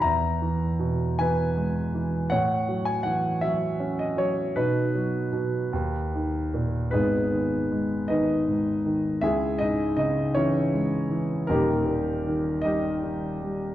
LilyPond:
<<
  \new Staff \with { instrumentName = "Grand piano" } { \time 6/8 \key dis \phrygian \tempo 4. = 52 << { ais''4 r8 gis''4. | fis''8. gis''16 fis''8 e''8. dis''16 cis''8 | b'2~ b'8 r8 | \key gis \minor b'4. dis''4. |
e''8 dis''8 dis''8 cis''4 r8 | ais'4. dis''4. | } \\ { e''4. b'4. | cis''4. r4. | dis'2~ dis'8 r8 | <b dis' gis'>4. <dis' b'>4. |
<e' gis'>8 dis'8 dis'8 <cis' e'>4 r8 | <ais dis' g'>4. <dis' g'>4. | } >> }
  \new Staff \with { instrumentName = "Grand piano" } { \clef bass \time 6/8 \key dis \phrygian e,8 e8 b,8 e8 gis8 e8 | a,8 fis8 e8 fis8 cis'8 fis8 | b,8 fis8 b,8 dis,8 dis8 ais,8 | \key gis \minor <gis,, gis,>8 dis8 gis8 dis8 gis,8 dis8 |
cis,8 gis,8 cis8 e8 gis8 e8 | <dis,, dis,>8 ais,8 dis8 g8 dis8 g8 | }
>>